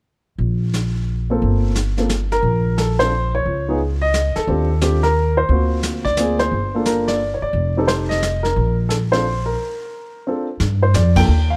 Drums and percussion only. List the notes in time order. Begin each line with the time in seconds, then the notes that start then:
0.39 brush sweep
0.73 snare, hi-hat pedal
1.41 brush sweep
1.75 snare, hi-hat pedal
1.98 snare
2.09 snare, hi-hat pedal
2.32 snare
2.44 brush sweep
2.78 snare, hi-hat pedal
3.00 snare
3.46 brush sweep
4.14 snare, hi-hat pedal
4.36 snare
4.48 brush sweep
4.81 snare, hi-hat pedal
5.03 snare
5.49 brush sweep
5.83 snare, hi-hat pedal
6.05 kick
6.17 snare, hi-hat pedal
6.39 snare
6.51 brush sweep
6.85 snare, hi-hat pedal
7.08 snare
7.54 brush sweep
7.88 snare, hi-hat pedal
8.11 snare
8.22 snare, hi-hat pedal
8.45 snare
8.56 brush sweep
8.90 snare, hi-hat pedal
9.13 snare
10.60 brush sweep, snare
10.94 snare, hi-hat pedal
11.16 kick, ride